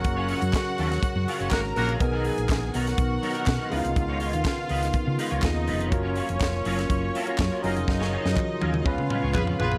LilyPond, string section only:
\new Staff \with { instrumentName = "String section" } { \time 4/4 \key dis \minor \tempo 4 = 123 <fis' fis''>2. <ais' ais''>4 | <gis' gis''>4. <fis' fis''>2 <eis' eis''>8~ | <eis' eis''>2. <dis' dis''>4 | <cis' cis''>2.~ <cis' cis''>8 <dis' dis''>8~ |
<dis' dis''>2 <eis' eis''>2 | }